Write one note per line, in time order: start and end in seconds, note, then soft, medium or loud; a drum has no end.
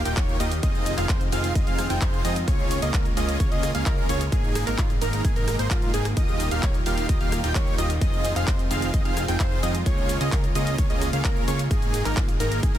0.00 2.44 D#3 medium
0.00 0.61 A#3 medium
0.00 4.28 F4 medium
0.00 0.61 G4 medium
0.00 sub drop medium
0.05 0.15 D#1 medium
0.05 0.14 A#3 medium
0.05 0.14 D#4 medium
0.05 0.14 F4 medium
0.05 0.14 G4 medium
0.05 0.14 G5 medium
0.05 closed hi-hat medium
0.05 cabasa soft
0.17 0.36 A#3 medium
0.17 0.36 D#4 medium
0.17 0.36 F4 medium
0.17 0.36 G4 medium
0.17 0.36 C#5 loud
0.17 kick loud
0.17 clap loud
0.17 closed hi-hat medium
0.17 cabasa soft
0.29 cabasa soft
0.40 0.61 D#2 medium
0.40 0.52 A#3 medium
0.40 0.52 D#4 medium
0.40 0.52 F4 medium
0.40 0.52 G4 medium
0.40 0.52 D#5 loud
0.40 open hi-hat medium
0.40 cabasa medium
0.52 closed hi-hat medium
0.52 cabasa soft
0.63 0.95 F1 loud
0.63 4.29 G#3 medium
0.63 0.95 C4 medium
0.63 2.46 C4 medium
0.63 0.95 D#4 medium
0.63 0.95 F4 medium
0.63 0.95 G#4 medium
0.63 0.95 D#5 medium
0.63 0.95 D#5 loud
0.63 kick loud
0.63 closed hi-hat medium
0.63 cabasa soft
0.75 cabasa soft
0.86 open hi-hat loud
0.86 cabasa medium
0.98 1.07 F1 loud
0.98 1.08 C4 loud
0.98 1.08 D#4 medium
0.98 1.08 F4 loud
0.98 1.08 G#4 medium
0.98 1.08 F5 loud
0.98 clap soft
0.98 closed hi-hat medium
0.98 cabasa soft
1.09 1.21 C4 medium
1.09 1.21 D#4 medium
1.09 1.21 F4 medium
1.09 1.21 G#4 medium
1.09 1.21 C5 loud
1.09 1.21 C5 medium
1.09 kick loud
1.09 clap loud
1.09 closed hi-hat medium
1.09 cabasa soft
1.21 closed hi-hat soft
1.21 cabasa soft
1.32 1.53 F1 loud
1.32 1.53 C4 medium
1.32 1.53 D#4 medium
1.32 1.53 F4 medium
1.32 1.53 G#4 medium
1.32 1.53 F5 loud
1.32 open hi-hat loud
1.32 cabasa medium
1.44 closed hi-hat medium
1.44 cabasa soft
1.55 1.65 C4 medium
1.55 1.65 D#4 medium
1.55 1.65 F4 medium
1.55 1.65 G#4 medium
1.55 1.65 D#5 medium
1.55 kick loud
1.55 closed hi-hat medium
1.55 cabasa soft
1.67 1.88 F1 loud
1.67 1.86 C4 medium
1.67 1.86 D#4 medium
1.67 1.86 F4 medium
1.67 1.86 G#4 medium
1.67 1.86 F5 loud
1.67 1.86 F5 medium
1.67 closed hi-hat soft
1.67 cabasa soft
1.79 cross-stick medium
1.79 open hi-hat loud
1.79 cabasa medium
1.90 1.99 F1 loud
1.90 1.99 C4 medium
1.90 1.99 D#4 medium
1.90 1.99 F4 medium
1.90 1.99 G#4 medium
1.90 1.99 G5 medium
1.90 closed hi-hat soft
1.90 cabasa soft
2.01 2.21 C4 loud
2.01 2.21 D#4 medium
2.01 2.21 F4 medium
2.01 2.21 G#4 medium
2.01 2.21 C5 loud
2.01 kick loud
2.01 clap loud
2.01 closed hi-hat medium
2.01 cabasa soft
2.13 cabasa soft
2.25 2.45 F2 medium
2.25 2.37 C4 medium
2.25 2.37 D#4 medium
2.25 2.37 F4 medium
2.25 2.37 G#4 medium
2.25 2.37 D#5 loud
2.25 open hi-hat loud
2.25 cabasa medium
2.36 closed hi-hat medium
2.36 cabasa soft
2.48 2.80 C#2 loud
2.48 4.30 C#3 medium
2.48 4.30 A#3 medium
2.48 2.80 A#3 medium
2.48 2.80 C#4 medium
2.48 2.80 F4 medium
2.48 2.80 G#4 medium
2.48 2.80 C#5 medium
2.48 2.80 C#5 loud
2.48 kick loud
2.48 closed hi-hat medium
2.48 cabasa soft
2.59 cabasa soft
2.71 open hi-hat loud
2.71 cabasa medium
2.82 2.92 C#2 loud
2.82 2.92 A#3 loud
2.82 2.92 C#4 medium
2.82 2.92 F4 medium
2.82 2.92 G#4 medium
2.82 2.92 D#5 loud
2.82 closed hi-hat medium
2.82 cabasa soft
2.94 3.06 A#3 medium
2.94 3.06 C#4 medium
2.94 3.06 F4 medium
2.94 3.06 G#4 medium
2.94 3.06 A#4 loud
2.94 kick loud
2.94 clap loud
2.94 closed hi-hat medium
2.94 cabasa soft
3.05 closed hi-hat soft
3.05 cabasa soft
3.17 3.38 C#2 loud
3.17 3.37 A#3 medium
3.17 3.37 C#4 medium
3.17 3.37 F4 medium
3.17 3.37 G#4 medium
3.17 3.37 D#5 loud
3.17 open hi-hat loud
3.17 cabasa medium
3.29 closed hi-hat soft
3.29 cabasa soft
3.40 3.49 C#2 loud
3.40 3.50 A#3 medium
3.40 3.50 C#4 medium
3.40 3.50 F4 medium
3.40 3.50 G#4 medium
3.40 3.50 C#5 medium
3.40 kick loud
3.40 closed hi-hat medium
3.40 cabasa soft
3.52 3.72 C#2 loud
3.52 3.71 A#3 medium
3.52 3.71 C#4 medium
3.52 3.71 F4 medium
3.52 3.71 G#4 medium
3.52 3.71 D#5 medium
3.52 3.71 D#5 loud
3.52 closed hi-hat soft
3.52 cabasa soft
3.63 cross-stick medium
3.63 open hi-hat loud
3.63 cabasa medium
3.75 3.84 C#2 loud
3.75 3.83 A#3 medium
3.75 3.83 C#4 medium
3.75 3.83 F4 medium
3.75 3.83 G#4 medium
3.75 3.83 F5 medium
3.75 closed hi-hat medium
3.75 cabasa soft
3.86 4.06 A#3 loud
3.86 4.06 C#4 medium
3.86 4.06 F4 medium
3.86 4.06 G#4 medium
3.86 4.05 A#4 loud
3.86 4.06 A#4 loud
3.86 kick loud
3.86 clap loud
3.86 closed hi-hat medium
3.86 cabasa soft
3.98 cabasa soft
4.09 4.30 C#2 loud
4.09 4.21 A#3 loud
4.09 4.21 C#4 medium
4.09 4.21 F4 medium
4.09 4.21 G#4 medium
4.09 4.21 C#5 loud
4.09 open hi-hat loud
4.09 cabasa medium
4.21 closed hi-hat medium
4.21 cabasa soft
4.32 4.65 G#1 loud
4.32 6.15 D#3 medium
4.32 6.15 G#3 medium
4.32 4.64 A#3 medium
4.32 7.98 A#3 medium
4.32 4.64 D#4 medium
4.32 4.64 G#4 loud
4.32 6.15 G#4 medium
4.32 kick loud
4.32 closed hi-hat medium
4.32 cabasa soft
4.44 cabasa soft
4.55 cross-stick medium
4.55 open hi-hat loud
4.55 cabasa medium
4.67 4.76 G#1 loud
4.67 4.77 A#3 loud
4.67 4.77 D#4 medium
4.67 4.77 A#4 loud
4.67 clap soft
4.67 closed hi-hat medium
4.67 cabasa soft
4.78 4.99 G#1 loud
4.78 4.91 A#3 medium
4.78 4.91 D#4 medium
4.78 4.91 F4 medium
4.78 4.91 F4 loud
4.78 kick loud
4.78 clap loud
4.78 closed hi-hat medium
4.78 cabasa soft
4.90 closed hi-hat soft
4.90 cabasa soft
5.02 5.22 G#1 loud
5.02 5.22 A#3 medium
5.02 5.22 D#4 medium
5.02 5.22 A#4 loud
5.02 open hi-hat loud
5.02 cabasa medium
5.13 closed hi-hat soft
5.13 cabasa soft
5.25 5.34 A#3 medium
5.25 5.34 D#4 medium
5.25 5.34 G#4 medium
5.25 kick loud
5.25 closed hi-hat medium
5.25 cabasa soft
5.36 5.57 G#1 loud
5.36 5.55 A#3 medium
5.36 5.55 D#4 medium
5.36 5.55 A#4 medium
5.36 5.55 A#4 loud
5.36 closed hi-hat soft
5.36 cabasa soft
5.48 cross-stick medium
5.48 open hi-hat loud
5.48 cabasa medium
5.59 5.68 G#1 loud
5.59 5.68 A#3 medium
5.59 5.68 D#4 medium
5.59 5.68 C5 medium
5.59 5.68 C5 loud
5.59 closed hi-hat soft
5.59 cabasa soft
5.71 5.91 G#2 loud
5.71 5.90 A#3 medium
5.71 5.90 D#4 medium
5.71 5.90 F4 loud
5.71 kick loud
5.71 clap loud
5.71 closed hi-hat medium
5.71 cabasa soft
5.82 closed hi-hat soft
5.82 cabasa soft
5.94 6.15 G#1 loud
5.94 6.06 A#3 loud
5.94 6.06 D#4 medium
5.94 6.06 G#4 loud
5.94 open hi-hat loud
5.94 cabasa medium
6.05 cross-stick medium
6.05 closed hi-hat medium
6.05 cabasa soft
6.17 9.82 D#3 medium
6.17 8.00 G3 medium
6.17 6.49 A#3 medium
6.17 6.49 D#4 medium
6.17 8.00 F4 medium
6.17 6.49 F4 medium
6.17 6.49 G4 medium
6.17 6.49 D#5 loud
6.17 kick loud
6.17 closed hi-hat medium
6.17 cabasa soft
6.29 cabasa soft
6.40 open hi-hat loud
6.40 cabasa medium
6.51 6.61 D#1 loud
6.51 6.61 A#3 loud
6.51 6.61 D#4 medium
6.51 6.61 F4 medium
6.51 6.61 G4 medium
6.51 6.61 F5 loud
6.51 closed hi-hat medium
6.51 cabasa soft
6.63 6.75 A#3 medium
6.63 6.75 D#4 medium
6.63 6.75 F4 medium
6.63 6.75 G4 medium
6.63 6.75 C#5 loud
6.63 6.75 C#5 medium
6.63 kick loud
6.63 clap loud
6.63 closed hi-hat medium
6.63 cabasa soft
6.74 closed hi-hat soft
6.74 cabasa soft
6.86 7.07 D#1 loud
6.86 7.06 A#3 medium
6.86 7.06 D#4 medium
6.86 7.06 F4 medium
6.86 7.06 G4 medium
6.86 7.06 F5 loud
6.86 open hi-hat medium
6.86 cabasa medium
6.98 closed hi-hat soft
6.98 cabasa soft
7.09 7.18 D#1 loud
7.09 7.19 A#3 medium
7.09 7.19 D#4 medium
7.09 7.19 F4 medium
7.09 7.19 G4 medium
7.09 7.19 D#5 medium
7.09 kick loud
7.09 closed hi-hat medium
7.09 cabasa soft
7.21 7.41 D#1 loud
7.21 7.40 A#3 medium
7.21 7.40 D#4 medium
7.21 7.40 F4 medium
7.21 7.40 G4 medium
7.21 7.40 F5 medium
7.21 7.40 F5 loud
7.21 closed hi-hat soft
7.21 cabasa soft
7.32 cross-stick medium
7.32 open hi-hat loud
7.32 cabasa medium
7.44 7.53 D#1 loud
7.44 7.53 A#3 medium
7.44 7.53 D#4 medium
7.44 7.53 F4 medium
7.44 7.53 G4 medium
7.44 7.53 G5 medium
7.44 closed hi-hat soft
7.44 cabasa soft
7.55 7.76 D#2 medium
7.55 7.75 A#3 medium
7.55 7.75 D#4 medium
7.55 7.75 F4 medium
7.55 7.75 G4 medium
7.55 7.75 C#5 loud
7.55 kick loud
7.55 clap loud
7.55 closed hi-hat medium
7.55 cabasa soft
7.67 cabasa soft
7.78 7.99 D#1 loud
7.78 7.90 A#3 loud
7.78 7.90 D#4 medium
7.78 7.90 F4 medium
7.78 7.90 G4 medium
7.78 7.90 D#5 loud
7.78 7.91 D#5 loud
7.78 open hi-hat loud
7.78 cabasa medium
7.90 closed hi-hat medium
7.90 cabasa soft
8.01 11.67 G#3 medium
8.01 8.33 C4 medium
8.01 9.84 C4 medium
8.01 8.33 D#4 medium
8.01 8.33 F4 medium
8.01 11.67 F4 medium
8.01 8.33 G#4 medium
8.01 8.33 D#5 loud
8.01 kick loud
8.01 closed hi-hat medium
8.01 cabasa soft
8.13 cabasa soft
8.25 open hi-hat loud
8.25 cabasa medium
8.36 8.45 F1 medium
8.36 8.46 C4 loud
8.36 8.46 D#4 medium
8.36 8.46 F4 medium
8.36 8.46 G#4 medium
8.36 8.46 F5 loud
8.36 clap soft
8.36 closed hi-hat medium
8.36 cabasa soft
8.48 8.60 C4 medium
8.48 8.60 D#4 medium
8.48 8.60 F4 medium
8.48 8.60 G#4 medium
8.48 8.60 C5 loud
8.48 8.60 C5 medium
8.48 kick loud
8.48 clap loud
8.48 closed hi-hat medium
8.48 cabasa soft
8.59 closed hi-hat soft
8.59 cabasa soft
8.71 8.91 F1 loud
8.71 8.91 C4 loud
8.71 8.91 D#4 medium
8.71 8.91 F4 medium
8.71 8.91 G#4 medium
8.71 8.91 F5 loud
8.71 open hi-hat medium
8.71 cabasa medium
8.82 closed hi-hat medium
8.82 cabasa soft
8.94 9.03 F1 loud
8.94 9.04 C4 medium
8.94 9.04 D#4 medium
8.94 9.04 F4 medium
8.94 9.04 G#4 medium
8.94 9.04 D#5 medium
8.94 kick loud
8.94 closed hi-hat medium
8.94 cabasa soft
9.05 9.26 F1 loud
9.05 9.25 C4 medium
9.05 9.25 D#4 medium
9.05 9.25 F4 medium
9.05 9.25 G#4 medium
9.05 9.25 F5 loud
9.05 9.25 F5 medium
9.05 closed hi-hat soft
9.05 cabasa soft
9.17 cross-stick medium
9.17 open hi-hat loud
9.17 cabasa medium
9.28 9.38 F1 loud
9.28 9.37 C4 medium
9.28 9.37 D#4 medium
9.28 9.37 F4 medium
9.28 9.37 G#4 medium
9.28 9.37 G5 medium
9.28 closed hi-hat medium
9.28 cabasa soft
9.40 9.59 C4 medium
9.40 9.59 D#4 medium
9.40 9.59 F4 medium
9.40 9.59 G#4 medium
9.40 9.59 C5 loud
9.40 kick loud
9.40 clap loud
9.40 closed hi-hat medium
9.40 cabasa soft
9.52 cabasa soft
9.63 9.84 F2 loud
9.63 9.75 C4 loud
9.63 9.75 D#4 medium
9.63 9.75 F4 medium
9.63 9.75 G#4 medium
9.63 9.75 D#5 loud
9.63 open hi-hat medium
9.63 cabasa medium
9.75 closed hi-hat medium
9.75 cabasa soft
9.86 11.69 C#3 medium
9.86 10.18 A#3 medium
9.86 12.78 A#3 medium
9.86 10.18 C#4 medium
9.86 10.18 F4 medium
9.86 10.18 G#4 medium
9.86 10.18 C#5 loud
9.86 kick loud
9.86 closed hi-hat medium
9.86 cabasa soft
9.98 cabasa soft
10.09 open hi-hat loud
10.09 cabasa medium
10.21 10.30 C#2 loud
10.21 10.30 A#3 loud
10.21 10.30 C#4 medium
10.21 10.30 F4 medium
10.21 10.31 G#4 medium
10.21 10.30 D#5 loud
10.21 10.31 D#5 loud
10.21 closed hi-hat medium
10.21 cabasa soft
10.32 10.44 A#3 medium
10.32 10.44 C#4 medium
10.32 10.44 F4 medium
10.32 10.44 G#4 medium
10.32 10.44 A#4 loud
10.32 10.44 A#4 medium
10.32 kick loud
10.32 clap loud
10.32 closed hi-hat medium
10.32 cabasa medium
10.44 closed hi-hat soft
10.44 cabasa soft
10.55 10.76 C#2 loud
10.55 10.76 A#3 medium
10.55 10.76 C#4 medium
10.55 10.76 F4 medium
10.55 10.76 G#4 medium
10.55 10.76 D#5 loud
10.55 open hi-hat medium
10.55 cabasa medium
10.67 closed hi-hat medium
10.67 cabasa soft
10.78 10.88 C#2 medium
10.78 10.88 A#3 medium
10.78 10.88 C#4 medium
10.78 10.88 F4 medium
10.78 10.88 G#4 medium
10.78 10.88 C#5 medium
10.78 kick loud
10.78 closed hi-hat medium
10.78 cabasa soft
10.90 11.11 C#2 loud
10.90 11.09 A#3 medium
10.90 11.09 C#4 medium
10.90 11.09 F4 medium
10.90 11.09 G#4 medium
10.90 11.09 D#5 medium
10.90 11.09 D#5 loud
10.90 closed hi-hat soft
10.90 cabasa soft
11.02 cross-stick medium
11.02 open hi-hat loud
11.02 cabasa medium
11.13 11.22 C#2 loud
11.13 11.22 A#3 medium
11.13 11.22 C#4 medium
11.13 11.22 F4 medium
11.13 11.22 G#4 medium
11.13 11.22 F5 loud
11.13 11.22 F5 medium
11.13 closed hi-hat medium
11.13 cabasa soft
11.25 11.44 A#3 loud
11.25 11.44 C#4 medium
11.25 11.44 F4 medium
11.25 11.44 G#4 medium
11.25 11.44 A#4 loud
11.25 kick loud
11.25 clap loud
11.25 closed hi-hat medium
11.25 cabasa soft
11.36 cabasa soft
11.48 11.69 C#2 medium
11.48 11.60 A#3 loud
11.48 11.60 C#4 medium
11.48 11.60 F4 medium
11.48 11.60 G#4 medium
11.48 11.60 C#5 loud
11.48 open hi-hat medium
11.48 cabasa medium
11.59 closed hi-hat medium
11.59 cabasa soft
11.71 12.03 G#1 loud
11.71 12.78 D#3 medium
11.71 12.78 G#3 medium
11.71 12.03 A#3 medium
11.71 12.03 D#4 medium
11.71 12.03 G#4 loud
11.71 12.78 G#4 medium
11.71 kick loud
11.71 closed hi-hat medium
11.71 cabasa soft
11.82 closed hi-hat soft
11.82 cabasa soft
11.94 open hi-hat loud
11.94 cabasa medium
12.05 12.15 G#1 medium
12.05 12.15 A#3 loud
12.05 12.15 D#4 medium
12.05 12.15 A#4 loud
12.05 clap soft
12.05 closed hi-hat medium
12.05 cabasa soft
12.17 12.29 A#3 medium
12.17 12.29 D#4 medium
12.17 12.29 F4 loud
12.17 12.29 F4 medium
12.17 kick loud
12.17 clap loud
12.17 closed hi-hat medium
12.17 cabasa soft
12.29 closed hi-hat soft
12.29 cabasa soft
12.40 12.61 G#1 loud
12.40 12.60 A#3 medium
12.40 12.60 D#4 medium
12.40 12.60 A#4 loud
12.40 open hi-hat loud
12.40 cabasa medium
12.52 closed hi-hat medium
12.52 cabasa soft
12.63 12.73 A#3 medium
12.63 12.73 D#4 medium
12.63 12.73 G#4 medium
12.63 kick loud
12.63 closed hi-hat medium
12.63 reverse cymbal medium
12.63 cabasa soft
12.75 12.78 G#1 loud
12.75 12.78 A#3 medium
12.75 12.78 D#4 medium
12.75 12.78 A#4 loud
12.75 12.78 A#4 medium
12.75 closed hi-hat soft
12.75 cabasa soft